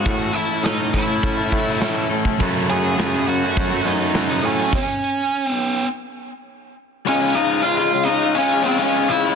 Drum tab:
CC |----------------|----------------|x---------------|----------------|
HH |o-o-o-o-o-o-o-o-|o-o-o-o-o-o-o-o-|----------------|----------------|
SD |----o-------o---|----o-------o---|----------------|----------------|
BD |o-----o-o-o----o|o-------o-------|o---------------|----------------|